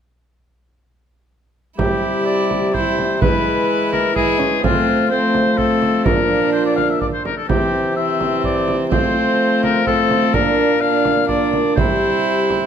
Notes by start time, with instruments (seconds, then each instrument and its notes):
1.78 bassoon C3, trombone G3, violin E4, oboe G4, frame drum
2.25 oboe D5
2.51 frame drum
2.74 trombone G3, violin E4, oboe C5, frame drum
2.98 frame drum
3.21 bassoon E3, trombone G#3, violin E4, oboe B4, frame drum
3.92 oboe A#4, frame drum
4.16 trombone G#3, violin E4, oboe G#4, frame drum
4.39 violin C#4, frame drum
4.63 bassoon F3, trombone A3, violin C4, oboe F4, frame drum
5.10 trombone A3, violin C4, oboe C5
5.34 frame drum
5.57 trombone A3, violin C4, oboe A4, frame drum
5.82 frame drum
6.04 bassoon A#2, trombone F3, violin D4, oboe A#4, frame drum
6.53 oboe C5
6.65 oboe D5
6.76 oboe F5, frame drum
6.90 oboe E5
7.01 oboe D5, frame drum
7.14 oboe C5
7.25 oboe A#4, frame drum
7.37 oboe A4
7.49 bassoon C3, trombone E3, violin C4, oboe G4, frame drum
7.96 trombone E3, violin C4, oboe E5
8.21 frame drum
8.44 oboe D5, frame drum
8.68 frame drum
8.91 bassoon F3, trombone A3, violin C4, oboe C5, frame drum
9.63 oboe A#4, frame drum
9.86 trombone A3, violin C4, oboe A4, frame drum
10.11 frame drum
10.34 bassoon A#2, trombone A#3, violin D4, oboe A#4, frame drum
10.81 trombone A#3, violin D4, oboe F5
11.05 frame drum
11.27 trombone A#3, violin D4, oboe D5, frame drum
11.53 frame drum
11.76 bassoon C3, trombone G3, violin E4, oboe C5, frame drum
12.50 frame drum